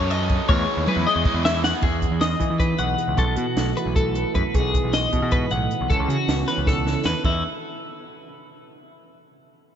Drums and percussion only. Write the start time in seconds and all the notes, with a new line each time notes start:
0.11 ride
0.29 kick, ride
0.49 kick, high tom
0.88 mid tom
1.25 kick
1.45 snare
1.64 snare
1.82 kick, crash
2.02 kick, closed hi-hat
2.21 snare, closed hi-hat
2.40 kick, closed hi-hat
2.60 kick, closed hi-hat
2.78 closed hi-hat
2.98 closed hi-hat
3.18 kick, closed hi-hat
3.36 closed hi-hat
3.57 snare, closed hi-hat
3.77 closed hi-hat
3.96 kick, closed hi-hat
4.15 closed hi-hat
4.35 kick, closed hi-hat
4.54 kick, closed hi-hat
4.74 kick, closed hi-hat
4.93 snare, closed hi-hat
5.13 kick, closed hi-hat
5.31 kick, closed hi-hat
5.51 closed hi-hat
5.71 closed hi-hat
5.90 kick, closed hi-hat
6.10 closed hi-hat
6.28 snare, closed hi-hat
6.48 snare, closed hi-hat
6.67 kick, snare
6.87 snare
7.05 snare
7.24 kick, crash